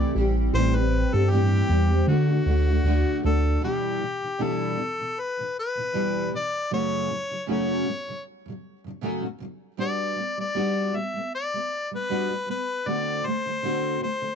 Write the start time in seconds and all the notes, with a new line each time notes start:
Already playing: C3 E3 A3 E4 G4 D5
0.15 A1 E3 G3 C4 G4
0.54 A1 A2 E3 G3 C4 G4 C5
0.74 G3 C4 G4 B4
1.13 G2 G3 C4 G4 A4
1.30 A2 E3 G3 C4 G4
1.69 E2 E3 G3 C4 G4
1.90 G3 C4 G4
2.07 D3 A3 D4 F#4
2.29 A3 D4 F#4
2.46 D2 D3 A3 D4 F#4
2.68 A3 D4 F#4
2.84 D2 D3 A3 D4 F#4
3.23 D2 D3 A3 D4 F#4 A4
3.61 E2 B2 E3 G3 D4 E4 G4
4.00 E2 B2 E3
4.21 E2 B2 E3
4.38 E2 B2 E3 G3 D4 E4
4.42 A4
4.77 E2 B2 E3
4.98 E2 B2 E3
5.20 B4
5.37 E2 B2 E3
5.59 B4
5.75 E2 B2 E3
5.93 E2 B2 E3 G3 D4 E4
6.32 E2 B2 E3
6.36 D5
6.71 F#2 C#3 F#3 A3 C#4 F#4 C#5
7.09 F#2 C#3 F#3
7.29 F#2 C#3 F#3
7.46 F#2 C#3 F#3 A3 C#4 F#4
7.51 C#5
7.86 F#2 C#3 F#3
8.06 F#2 C#3 F#3
8.46 F#2 C#3
8.50 F#3
8.84 F#2 C#3 F#3
9.01 F#2 C#3 F#3 A3 C#4 F#4
9.22 F#2 C#3
9.26 F#3
9.39 F#2 C#3 F#3
9.77 G3 B3 D4 F#4 D5
10.16 G3 B3
10.37 G3 B3 D5
10.54 G3 B3 D4 F#4
10.94 G3 B3 E5
11.13 G3 B3
11.35 D5
11.54 G3 B3
11.91 G3 B3
11.95 B4
12.09 G3 B3 D4 F#4
12.30 G3 B3
12.46 G3 B3
12.50 B4
12.86 D3 A3 C4 F#4 D5
13.24 D3 A3 C5
13.46 D3 A3
13.62 D3 A3 C4 F#4
14.00 D3 A3 C5
14.22 D3 A3